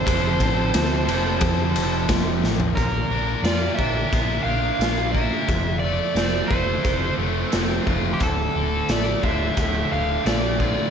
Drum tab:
RD |x-x-x-x-x-x-x---|----------------|----------------|----------------|
HH |----------------|x---x---x---x---|x---x---x---x---|x---x---x---x---|
SD |----o-------o-o-|----o-------o---|----o-------o---|----o-------o---|
FT |---------------o|----------------|----------------|----------------|
BD |o-o-----o---o---|o-----o-o-----o-|o-----o-o-----o-|o-----o-o-----o-|